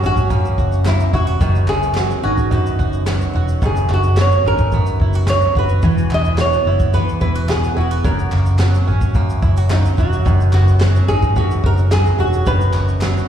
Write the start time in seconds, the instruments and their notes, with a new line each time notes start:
Already playing: steel-string acoustic guitar F#2 F#3 F#4, five-string banjo F#3 A#3 F#4
0.02 fingered electric bass G#1, steel-string acoustic guitar C#4, five-string banjo C#4, nylon-string guitar F#4, shaker
0.17 kick, shaker
0.30 steel-string acoustic guitar F#2, five-string banjo A#3, kick, shaker
0.45 shaker
0.58 fingered electric bass F#1, five-string banjo F#4, kick, shaker
0.72 shaker
0.85 steel-string acoustic guitar F#3, five-string banjo A#3, nylon-string guitar E4, snare, clap, shaker
1.00 shaker
1.13 fingered electric bass E1, five-string banjo E4, steel-string acoustic guitar F#4, nylon-string guitar F#4, kick
1.27 five-string banjo F#4, shaker
1.41 fingered electric bass F#1, steel-string acoustic guitar F#2, five-string banjo D#3, nylon-string guitar F#4, kick, shaker
1.55 shaker
1.68 fingered electric bass F#1, five-string banjo B3, nylon-string guitar G#4, clap, shaker
1.83 shaker
1.94 steel-string acoustic guitar F#3, five-string banjo F#4, snare, clap, shaker
2.11 shaker
2.23 fingered electric bass G#1, five-string banjo C#4, steel-string acoustic guitar D#4, nylon-string guitar F#4
2.38 kick, shaker
2.51 steel-string acoustic guitar F#2, five-string banjo B3, nylon-string guitar F#4, kick, shaker
2.66 shaker
2.79 fingered electric bass F#1, five-string banjo F#4, kick, shaker
2.93 shaker
3.06 steel-string acoustic guitar F#3, five-string banjo B3, snare, clap, shaker
3.21 shaker
3.34 fingered electric bass E1, steel-string acoustic guitar F#4, five-string banjo F#4
3.48 shaker
3.62 fingered electric bass F#1, steel-string acoustic guitar F#2, five-string banjo D#3, nylon-string guitar G#4, kick, shaker
3.76 shaker
3.89 fingered electric bass F#1, five-string banjo B3, clap
3.94 nylon-string guitar F#4
4.03 shaker
4.16 steel-string acoustic guitar F#3, five-string banjo F#4, snare, clap, shaker
4.21 nylon-string guitar C#5
4.31 shaker
4.44 fingered electric bass G#1, five-string banjo C#4, steel-string acoustic guitar D#4, nylon-string guitar A#4
4.58 kick, shaker
4.72 steel-string acoustic guitar F#2, five-string banjo B3, kick, shaker
4.86 shaker
4.99 fingered electric bass F#1, five-string banjo E4, kick
5.13 five-string banjo F#4, shaker
5.27 steel-string acoustic guitar F#3, five-string banjo B3, nylon-string guitar C#5, snare, clap, shaker
5.41 shaker
5.55 fingered electric bass F#1, steel-string acoustic guitar F#4, five-string banjo F#4, nylon-string guitar B4, kick
5.69 shaker
5.82 fingered electric bass E1, steel-string acoustic guitar E3, five-string banjo E3, kick, shaker
5.98 shaker
6.10 fingered electric bass E1, five-string banjo B3, nylon-string guitar D#5, clap
6.24 shaker
6.37 steel-string acoustic guitar B3, five-string banjo F#4, nylon-string guitar C#5, snare, clap, shaker
6.52 shaker
6.65 fingered electric bass F#1, five-string banjo E4, steel-string acoustic guitar E4
6.79 kick, shaker
6.93 steel-string acoustic guitar E3, five-string banjo B3, nylon-string guitar B4, kick, shaker
7.09 shaker
7.21 fingered electric bass E1, five-string banjo E4, nylon-string guitar B4, kick, shaker
7.35 five-string banjo F#4, shaker
7.49 five-string banjo B3, steel-string acoustic guitar B3, nylon-string guitar G#4, snare, clap, shaker
7.64 shaker
7.77 fingered electric bass E1, five-string banjo E4, nylon-string guitar F#4, steel-string acoustic guitar F#4
7.91 five-string banjo F#4, shaker
8.04 fingered electric bass F#1, steel-string acoustic guitar F#2, five-string banjo F#3, nylon-string guitar A#4, kick, shaker
8.19 shaker
8.32 fingered electric bass F#1, five-string banjo A#3, clap
8.46 shaker
8.58 steel-string acoustic guitar F#3, five-string banjo F#4, snare, clap, shaker
8.74 shaker
8.88 fingered electric bass G#1, five-string banjo C#4, steel-string acoustic guitar C#4
9.01 kick, shaker
9.14 steel-string acoustic guitar F#2, five-string banjo A#3, kick, shaker
9.30 shaker
9.42 fingered electric bass F#1, five-string banjo E4, kick, shaker
9.56 five-string banjo F#4, shaker
9.70 steel-string acoustic guitar F#3, five-string banjo A#3, nylon-string guitar D#4, snare, clap, shaker
9.85 shaker
9.97 fingered electric bass E1, steel-string acoustic guitar F#4, five-string banjo F#4, nylon-string guitar F#4, kick, shaker
10.13 shaker
10.25 fingered electric bass F#1, steel-string acoustic guitar F#2, five-string banjo D#3, kick, shaker
10.40 shaker
10.53 fingered electric bass F#1, five-string banjo B3, nylon-string guitar F#4, clap
10.68 shaker
10.80 steel-string acoustic guitar F#3, five-string banjo F#4, snare, clap, shaker
10.96 shaker
11.08 fingered electric bass G#1, five-string banjo C#4, steel-string acoustic guitar D#4, nylon-string guitar G#4, shaker
11.22 kick, shaker
11.36 steel-string acoustic guitar F#2, five-string banjo B3, nylon-string guitar F#4, kick, shaker
11.51 shaker
11.64 fingered electric bass F#1, five-string banjo F#4, nylon-string guitar A#4, kick
11.77 shaker
11.91 steel-string acoustic guitar F#3, five-string banjo B3, nylon-string guitar G#4, snare, clap, shaker
12.06 shaker
12.19 fingered electric bass E1, five-string banjo F#4, steel-string acoustic guitar F#4, nylon-string guitar F#4
12.33 shaker
12.46 fingered electric bass F#1, steel-string acoustic guitar F#2, five-string banjo D#3, nylon-string guitar B4, kick, shaker
12.61 shaker
12.73 fingered electric bass F#1, five-string banjo B3, clap, shaker
12.88 shaker
13.01 steel-string acoustic guitar F#3, five-string banjo F#4, snare, clap, shaker
13.17 shaker